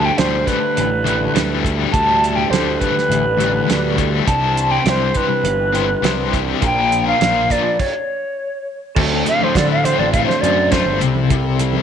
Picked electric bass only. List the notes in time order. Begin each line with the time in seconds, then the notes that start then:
0.18 D2
0.78 A1
1.36 D2
1.94 D2
2.51 D2
3.10 A1
3.69 D2
4.27 C2
4.86 C2
5.44 G1
6.02 C2
6.62 A#1
7.21 A#1
8.96 D2
9.55 D3
9.99 A1
10.43 F#2
10.86 G1
11.01 C2